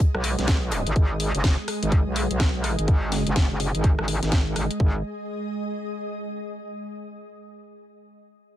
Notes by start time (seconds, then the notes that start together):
Already playing: G#3 G#4 D#5 D#6, downlifter
0.00 kick, closed hi-hat
0.15 B1, cross-stick
0.24 closed hi-hat, open hi-hat
0.39 B1, snare, closed hi-hat
0.48 kick, snare, closed hi-hat
0.71 cross-stick, closed hi-hat, open hi-hat
0.87 G#1, closed hi-hat
0.96 G#1, kick, closed hi-hat
1.20 open hi-hat
1.35 F#1, closed hi-hat
1.44 kick, snare, closed hi-hat
1.68 cross-stick, open hi-hat
1.83 G#1, closed hi-hat
1.92 kick, closed hi-hat
2.06 B1
2.16 open hi-hat
2.31 B1, closed hi-hat
2.40 kick, cross-stick, snare, closed hi-hat
2.64 cross-stick, open hi-hat
2.79 G#1, closed hi-hat
2.88 kick, closed hi-hat
3.12 snare, open hi-hat
3.27 F#1, closed hi-hat
3.36 kick, snare, closed hi-hat
3.51 F#1
3.60 open hi-hat
3.75 G#1, closed hi-hat
3.84 kick, closed hi-hat
3.99 G#1, cross-stick
4.08 open hi-hat
4.23 G#1, snare, closed hi-hat
4.32 kick, snare, closed hi-hat
4.56 G#1, cross-stick, open hi-hat
4.71 closed hi-hat
4.80 G#1 G#3, kick
4.89 G#4
4.96 D#5
5.02 D#6